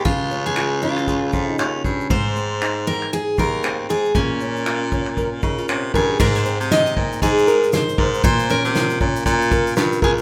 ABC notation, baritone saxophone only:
X:1
M:4/4
L:1/16
Q:"Swing 16ths" 1/4=117
K:Ab
V:1 name="Baritone saxophone" clef=bass
D,,8- D,,2 F,,2 E,,2 G,,2 | A,,8 z2 E,,4 A,,2 | B,,8- B,,2 D,2 C,2 G,,2 | A,,3 C,3 B,,2 A,,4 z2 A,,2 |
B,,3 C,3 B,,2 B,,4 G,,2 D,,2 |]